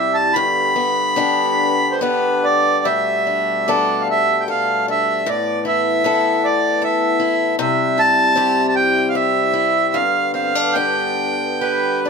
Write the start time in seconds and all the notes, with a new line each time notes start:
Already playing: C3 G3 E4 G4 E5
0.14 A5
0.33 G2 D3 B3 B5
0.76 B3
1.16 B3 D4 G4
1.92 C5
2.01 B3 D4 G4 B4
2.44 D5
2.84 B2 G3 A3 E5
3.27 D4
3.68 B3 D4 A4 D5
4.01 F5
4.11 E5
4.41 G5
4.48 A4 F5
4.88 D4 E5
5.26 A2 E3 B3 D5
5.65 E4 E5
6.04 B3 E4 A4
6.44 D5
6.82 A4 E5
7.20 E4
7.58 C3 G3 E4 E5
7.98 E4 A5
8.35 C4 E4 G4
8.68 A5
8.76 G5
9.09 F5
9.15 G4 E5
9.53 E4
9.92 G2 D3 B3 F5
10.33 C4 F5
10.55 D4
10.73 B3 D4 G4 G5
11.61 G4 B4
12.05 D4 D5